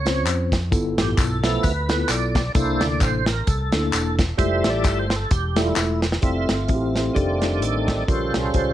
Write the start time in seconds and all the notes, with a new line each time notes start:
Already playing: C#2 C#5
0.05 C4 C#4 F4 C5, snare, closed hi-hat, tambourine
0.26 F2, clap, closed hi-hat, tambourine
0.52 kick, snare, closed hi-hat, tambourine
0.71 G1 G2 B3 E4 F4 A4, kick, closed hi-hat, tambourine
0.97 A1 G4, snare, closed hi-hat, tambourine
1.18 B1 A4, kick, clap, closed hi-hat, tambourine
1.43 F3 A3 B3 E4 A4, snare, closed hi-hat, tambourine
1.63 D2 B4, kick, closed hi-hat, tambourine
1.89 A3 E4 F4 A4, snare, closed hi-hat, tambourine
1.94 B3
2.09 B1 D5, clap, closed hi-hat, tambourine
2.35 kick, snare, closed hi-hat, tambourine
2.55 C2 C3 A#3 D4 E4 A4 C5, kick, closed hi-hat, tambourine
2.81 D2 D5, snare, closed hi-hat, tambourine
3.00 A1 C5, kick, clap, closed hi-hat, tambourine
3.26 A#4, snare, closed hi-hat, tambourine
3.47 C2 A4, kick, closed hi-hat, tambourine
3.72 D2 A#3 D4 E4 A4, snare, closed hi-hat, tambourine
3.92 E1, clap, closed hi-hat, tambourine
4.19 kick, snare, closed hi-hat, tambourine
4.37 F1 G3 G#3 A3 E4 F4 G4 C5 E5, kick, closed hi-hat, tambourine
4.44 A3
4.64 A1, snare, closed hi-hat, tambourine
4.70 D5
4.84 G1 E5, kick, clap, closed hi-hat, tambourine
4.99 C5
5.10 snare, closed hi-hat, tambourine
5.16 A4
5.31 E1 G4, kick, closed hi-hat, tambourine
5.56 G3 A3 E4 F4 A4, snare, closed hi-hat, tambourine
5.62 F4
5.76 E1 E4, snare, clap, tambourine
6.02 snare, tambourine
6.12 snare
6.21 F1 F3 G3 A3 C4 E4 F4 A4 E5, kick, closed hi-hat
6.49 G1, snare, closed hi-hat
6.68 A1 C4 E4 F4 F#4, kick, closed hi-hat
6.75 G4
6.96 snare, closed hi-hat
7.14 F1 D#3 G3 A3 D4 D#4 G4 A4 D5, kick, closed hi-hat
7.42 D4 D#4 G4 A4, snare, closed hi-hat
7.62 A1 C4 D#4 A4, closed hi-hat
7.88 kick, snare, closed hi-hat
8.08 A#1 A#2 C#3 F3 G3 C#4 F4 G4 A4 A#4 C5, kick, closed hi-hat
8.34 C2, snare, closed hi-hat
8.54 C#2 C#4 F4 G4 C5, kick, closed hi-hat